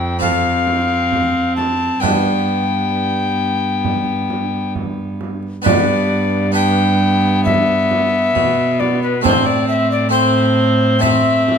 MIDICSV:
0, 0, Header, 1, 6, 480
1, 0, Start_track
1, 0, Tempo, 904977
1, 1071, Time_signature, 4, 2, 24, 8
1, 3477, Tempo, 892857
1, 6178, End_track
2, 0, Start_track
2, 0, Title_t, "Recorder"
2, 0, Program_c, 0, 74
2, 0, Note_on_c, 0, 79, 84
2, 96, Note_off_c, 0, 79, 0
2, 113, Note_on_c, 0, 77, 91
2, 815, Note_off_c, 0, 77, 0
2, 829, Note_on_c, 0, 81, 80
2, 1062, Note_on_c, 0, 79, 78
2, 1070, Note_off_c, 0, 81, 0
2, 2512, Note_off_c, 0, 79, 0
2, 2997, Note_on_c, 0, 74, 87
2, 3455, Note_off_c, 0, 74, 0
2, 3470, Note_on_c, 0, 79, 97
2, 3946, Note_off_c, 0, 79, 0
2, 3955, Note_on_c, 0, 76, 117
2, 4682, Note_on_c, 0, 74, 89
2, 4691, Note_off_c, 0, 76, 0
2, 4802, Note_off_c, 0, 74, 0
2, 4806, Note_on_c, 0, 71, 75
2, 4921, Note_off_c, 0, 71, 0
2, 4927, Note_on_c, 0, 72, 93
2, 5039, Note_on_c, 0, 74, 88
2, 5047, Note_off_c, 0, 72, 0
2, 5157, Note_off_c, 0, 74, 0
2, 5160, Note_on_c, 0, 76, 94
2, 5277, Note_off_c, 0, 76, 0
2, 5283, Note_on_c, 0, 74, 90
2, 5385, Note_off_c, 0, 74, 0
2, 5388, Note_on_c, 0, 72, 89
2, 5874, Note_on_c, 0, 76, 114
2, 5882, Note_off_c, 0, 72, 0
2, 6178, Note_off_c, 0, 76, 0
2, 6178, End_track
3, 0, Start_track
3, 0, Title_t, "Harpsichord"
3, 0, Program_c, 1, 6
3, 0, Note_on_c, 1, 41, 50
3, 0, Note_on_c, 1, 60, 42
3, 0, Note_on_c, 1, 65, 41
3, 0, Note_on_c, 1, 69, 43
3, 87, Note_off_c, 1, 60, 0
3, 88, Note_off_c, 1, 65, 0
3, 92, Note_off_c, 1, 69, 0
3, 101, Note_on_c, 1, 60, 44
3, 106, Note_on_c, 1, 65, 47
3, 117, Note_on_c, 1, 69, 46
3, 1042, Note_off_c, 1, 60, 0
3, 1045, Note_off_c, 1, 65, 0
3, 1050, Note_off_c, 1, 69, 0
3, 1051, Note_off_c, 1, 41, 0
3, 1062, Note_on_c, 1, 59, 38
3, 1069, Note_on_c, 1, 62, 37
3, 1074, Note_on_c, 1, 71, 35
3, 1083, Note_on_c, 1, 43, 41
3, 2875, Note_off_c, 1, 43, 0
3, 2970, Note_off_c, 1, 59, 0
3, 2974, Note_off_c, 1, 62, 0
3, 2977, Note_off_c, 1, 71, 0
3, 2980, Note_on_c, 1, 59, 48
3, 2987, Note_on_c, 1, 62, 49
3, 2992, Note_on_c, 1, 71, 48
3, 2999, Note_on_c, 1, 43, 54
3, 3452, Note_off_c, 1, 59, 0
3, 3457, Note_off_c, 1, 62, 0
3, 3458, Note_on_c, 1, 59, 53
3, 3460, Note_off_c, 1, 71, 0
3, 3466, Note_on_c, 1, 62, 56
3, 3473, Note_on_c, 1, 71, 49
3, 4420, Note_off_c, 1, 43, 0
3, 4444, Note_on_c, 1, 47, 56
3, 4890, Note_off_c, 1, 59, 0
3, 4894, Note_off_c, 1, 62, 0
3, 4897, Note_off_c, 1, 71, 0
3, 4901, Note_off_c, 1, 47, 0
3, 4907, Note_on_c, 1, 57, 51
3, 4915, Note_on_c, 1, 60, 51
3, 4920, Note_on_c, 1, 72, 54
3, 4926, Note_on_c, 1, 45, 58
3, 5371, Note_off_c, 1, 57, 0
3, 5378, Note_off_c, 1, 60, 0
3, 5378, Note_on_c, 1, 57, 55
3, 5384, Note_off_c, 1, 72, 0
3, 5384, Note_on_c, 1, 60, 60
3, 5395, Note_on_c, 1, 72, 59
3, 5852, Note_off_c, 1, 57, 0
3, 5855, Note_off_c, 1, 60, 0
3, 5860, Note_off_c, 1, 72, 0
3, 5862, Note_on_c, 1, 57, 57
3, 5867, Note_on_c, 1, 60, 55
3, 5875, Note_on_c, 1, 72, 61
3, 6178, Note_off_c, 1, 45, 0
3, 6178, Note_off_c, 1, 57, 0
3, 6178, Note_off_c, 1, 60, 0
3, 6178, Note_off_c, 1, 72, 0
3, 6178, End_track
4, 0, Start_track
4, 0, Title_t, "Viola"
4, 0, Program_c, 2, 41
4, 0, Note_on_c, 2, 60, 57
4, 95, Note_off_c, 2, 60, 0
4, 112, Note_on_c, 2, 60, 72
4, 1080, Note_on_c, 2, 59, 54
4, 1088, Note_off_c, 2, 60, 0
4, 2894, Note_off_c, 2, 59, 0
4, 2998, Note_on_c, 2, 59, 62
4, 3456, Note_off_c, 2, 59, 0
4, 3475, Note_on_c, 2, 59, 78
4, 4898, Note_off_c, 2, 59, 0
4, 4919, Note_on_c, 2, 60, 64
4, 5388, Note_off_c, 2, 60, 0
4, 5402, Note_on_c, 2, 60, 78
4, 5869, Note_off_c, 2, 60, 0
4, 5874, Note_on_c, 2, 60, 84
4, 6178, Note_off_c, 2, 60, 0
4, 6178, End_track
5, 0, Start_track
5, 0, Title_t, "Cello"
5, 0, Program_c, 3, 42
5, 0, Note_on_c, 3, 41, 61
5, 1048, Note_off_c, 3, 41, 0
5, 1076, Note_on_c, 3, 43, 53
5, 2871, Note_off_c, 3, 43, 0
5, 2999, Note_on_c, 3, 43, 74
5, 4420, Note_off_c, 3, 43, 0
5, 4442, Note_on_c, 3, 47, 70
5, 4925, Note_on_c, 3, 45, 71
5, 4934, Note_off_c, 3, 47, 0
5, 6178, Note_off_c, 3, 45, 0
5, 6178, End_track
6, 0, Start_track
6, 0, Title_t, "Frame drum"
6, 120, Note_on_c, 9, 64, 50
6, 173, Note_off_c, 9, 64, 0
6, 357, Note_on_c, 9, 64, 41
6, 410, Note_off_c, 9, 64, 0
6, 596, Note_on_c, 9, 64, 46
6, 649, Note_off_c, 9, 64, 0
6, 838, Note_on_c, 9, 64, 45
6, 891, Note_off_c, 9, 64, 0
6, 1079, Note_on_c, 9, 64, 68
6, 1132, Note_off_c, 9, 64, 0
6, 2040, Note_on_c, 9, 64, 49
6, 2093, Note_off_c, 9, 64, 0
6, 2282, Note_on_c, 9, 64, 42
6, 2335, Note_off_c, 9, 64, 0
6, 2522, Note_on_c, 9, 64, 43
6, 2575, Note_off_c, 9, 64, 0
6, 2762, Note_on_c, 9, 64, 43
6, 2815, Note_off_c, 9, 64, 0
6, 3003, Note_on_c, 9, 64, 84
6, 3056, Note_off_c, 9, 64, 0
6, 3966, Note_on_c, 9, 64, 55
6, 4020, Note_off_c, 9, 64, 0
6, 4208, Note_on_c, 9, 64, 46
6, 4262, Note_off_c, 9, 64, 0
6, 4449, Note_on_c, 9, 64, 51
6, 4503, Note_off_c, 9, 64, 0
6, 4687, Note_on_c, 9, 64, 50
6, 4741, Note_off_c, 9, 64, 0
6, 4926, Note_on_c, 9, 64, 80
6, 4980, Note_off_c, 9, 64, 0
6, 5883, Note_on_c, 9, 64, 56
6, 5936, Note_off_c, 9, 64, 0
6, 6127, Note_on_c, 9, 64, 49
6, 6178, Note_off_c, 9, 64, 0
6, 6178, End_track
0, 0, End_of_file